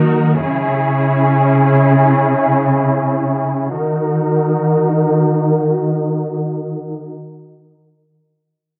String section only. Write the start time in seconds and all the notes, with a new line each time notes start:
Already playing: D#3 D#4 F#4 A#4
0.35 C#3 C#4 E4 G#4
3.73 D#3 D#4 F#4 A#4